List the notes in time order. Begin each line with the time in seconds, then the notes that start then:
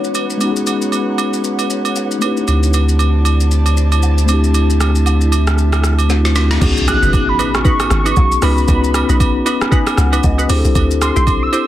Already playing: G#3 B3 C#4 D#4 F#4 B4 C#5 F#5
0.04 shaker
0.15 high agogo, shaker
0.30 shaker
0.38 G#3 B3 C#4, high agogo, shaker
0.43 D#4 F#4
0.51 G#4
0.56 shaker
0.67 high agogo, shaker
0.82 shaker
0.92 high agogo, shaker
1.18 high agogo, shaker
1.33 shaker
1.44 shaker
1.59 high agogo, shaker
1.70 shaker
1.85 high agogo, shaker
1.96 low woodblock, shaker
2.11 shaker
2.19 A3 C4 D4 E4 C5 D5 A5, high agogo, shaker
2.25 E4 G4
2.37 shaker
2.48 D2, high agogo, shaker
2.63 shaker
2.74 high agogo, shaker
2.89 shaker
2.99 high agogo, shaker
3.25 high agogo, shaker
3.40 shaker
3.51 shaker
3.66 high agogo, shaker
3.77 shaker
3.92 high agogo, shaker
4.03 low woodblock, shaker
4.18 shaker
4.26 A3 C4 D4 E5, high agogo, shaker
4.32 E4 G4
4.44 shaker
4.54 high agogo, shaker
4.70 shaker
4.80 cross-stick, high agogo, shaker
4.95 shaker
5.06 high agogo, low woodblock, shaker
5.21 shaker
5.32 high agogo, shaker
5.47 cross-stick, shaker
5.58 shaker
5.72 cross-stick, high agogo, shaker
5.84 cross-stick, shaker
5.99 high agogo, shaker
6.09 A3 C4 D4 E4 F#4, snare, low woodblock, shaker
6.25 snare, shaker
6.35 snare, high agogo, shaker
6.51 snare, shaker
6.60 C#2 B3 C#4 D#4 F#4 G#4, kick, crash, impact, high agogo, shaker
6.77 shaker
6.88 F#6, cross-stick, high agogo, shaker
7.02 F#1 D#4 F#4 B4, shaker
7.13 kick, high agogo, shaker
7.29 B5
7.39 D#4 F#4 B4, high agogo, shaker
7.54 C#6, cross-stick, shaker
7.65 D#4 F#4 B4, kick, shaker
7.80 cross-stick, high agogo, shaker
7.90 G#1 C#6, cross-stick, shaker
8.05 D#4 F#4 B4, high agogo, shaker
8.16 B1, kick, low woodblock, shaker
8.32 shaker
8.41 C#2 B3 C#4 D#4 F#4 B4 B5, cross-stick, open hi-hat, high agogo, shaker
8.58 shaker
8.67 C#2 B3 C#4 D#4 F#4 B4, kick, high agogo, shaker
8.84 shaker
8.94 cross-stick, high agogo, shaker
9.09 B1 D#4 F#4 B4, shaker
9.20 kick, high agogo, shaker
9.46 D#4 F#4 B4 B5, high agogo, shaker
9.61 cross-stick, shaker
9.71 D#4 F#4 B4 G#5, kick, shaker
9.87 cross-stick, high agogo, shaker
9.97 C#2 F#5, cross-stick, shaker
10.12 D#4 F#4 B4, high agogo, shaker
10.23 C#2 D#5, kick, low woodblock, shaker
10.38 D#4 F#4 B4, shaker
10.48 D2 C4 D4 E4 G4 C5, open hi-hat, high agogo, shaker
10.52 G#4
10.58 A4
10.65 C2, shaker
10.75 D2, kick, high agogo, shaker
10.91 shaker
11.02 C6, cross-stick, high agogo, shaker
11.16 B1 E4 G4 C5, shaker
11.27 kick, high agogo, shaker
11.43 E6
11.53 E4 G4 C5, high agogo, shaker